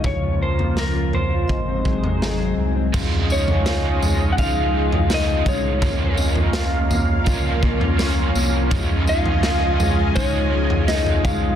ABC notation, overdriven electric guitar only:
X:1
M:4/4
L:1/8
Q:1/4=83
K:Db
V:1 name="Overdriven electric guitar"
z8 | [D,F,A,EF]2 [F,A,EF]2 [F,A,EF]2 [F,A,EF]2 | [D,F,B,DF]4 [F,B,DF]2 [F,B,DF]2 | [D,F,A,EF]2 [F,A,EF]2 [F,A,EF]2 [F,A,EF]2 |]